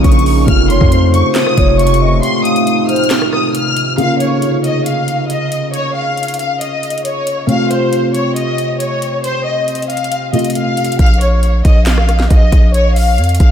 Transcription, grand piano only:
Already playing: C#3 A#3 F4
0.46 C3 A3 F4
3.97 C#3 A#3 F4
7.47 C3 A3 F4
10.32 C3 A3 F4

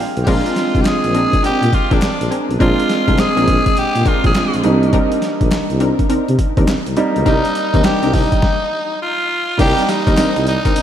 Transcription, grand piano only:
Already playing: G#3 C4 D4 F4 F5 G5 G#5 A#5 C6
0.26 G#3 C4 D4 F4
2.59 G#3 C4 D4 F4
4.34 G#3 C4 D4 F4
4.63 G3 A#3 D4 D#4
6.97 G3 A#3 D#4 D5
7.84 G3 A#3 D4 D#4
9.58 G3 A#3 D#4 D5

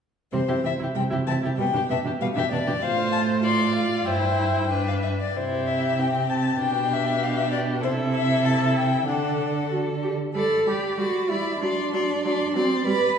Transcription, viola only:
0.32 G3
0.48 E4
0.63 C4
0.79 E4
0.94 G3
1.10 E4
1.27 C4
1.42 E4
1.57 G3
1.73 D4
1.89 B3
2.04 D4
2.20 G3
2.35 D4
2.51 B3
2.67 D4
2.81 F4
3.43 F4
4.06 E4
4.70 D4
5.35 E4
5.99 C4
6.61 D4
7.82 E4
9.08 D4
9.71 F#4
10.03 G4
10.35 G3
10.66 G3
10.98 G3
11.29 G3
11.62 F#3
11.93 F#3
12.25 F#3
12.56 F#3
12.86 G3

